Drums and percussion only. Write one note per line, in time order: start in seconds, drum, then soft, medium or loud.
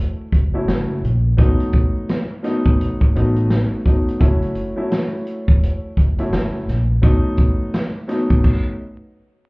0.32 kick medium
0.32 closed hi-hat medium
0.68 snare loud
0.68 closed hi-hat loud
1.04 closed hi-hat medium
1.38 kick loud
1.38 closed hi-hat loud
1.60 closed hi-hat medium
1.73 kick loud
1.73 closed hi-hat medium
2.09 snare loud
2.09 closed hi-hat medium
2.44 snare soft
2.44 closed hi-hat medium
2.66 kick loud
2.81 closed hi-hat loud
3.01 kick medium
3.16 closed hi-hat medium
3.36 closed hi-hat soft
3.50 snare loud
3.50 closed hi-hat loud
3.86 kick medium
3.86 closed hi-hat medium
4.09 closed hi-hat medium
4.21 kick loud
4.21 closed hi-hat loud
4.42 closed hi-hat soft
4.55 closed hi-hat medium
4.91 snare loud
4.91 closed hi-hat medium
5.27 closed hi-hat medium
5.48 kick loud
5.63 closed hi-hat loud
5.97 kick medium
5.97 closed hi-hat medium
6.19 closed hi-hat medium
6.33 snare loud
6.33 closed hi-hat loud
6.68 snare soft
6.68 closed hi-hat medium
7.03 kick loud
7.03 closed hi-hat loud
7.37 kick loud
7.37 closed hi-hat medium
7.74 snare loud
7.74 closed hi-hat loud
8.09 snare soft
8.09 closed hi-hat medium
8.30 kick loud
8.44 kick loud
8.44 crash medium